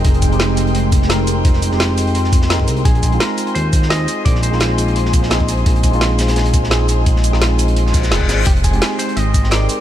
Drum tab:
HH |xxxxx-xxx-x-x-x-|x-x-x-xxx-x-x-xx|xxxxx-xxx-x-x-x-|x-x-x-xxx-x-x-xx|
SH |--x---x---x---x-|--x---x---x---x-|--x---x---x---x-|--x---x---x---x-|
SD |----o------oo---|-o-oo----o-oo---|----o------oo---|-o-oo----o-oo---|
BD |o-o-------o-----|o---------o--o--|o-o-------o-----|o---------o--o--|

HH |xxxxx-xxxxx-x-x-|x-x-x-xxx-x-x-x-|xxxxx-xxx-x-x-x-|
SH |--x---x---x---x-|--x---x---xx--x-|--x---x---x---x-|
SD |----o-ooo--oo---|-o-oo----o-oo-o-|----o------oo---|
BD |o-o-------o-----|o---------o--o--|o-o-------o-----|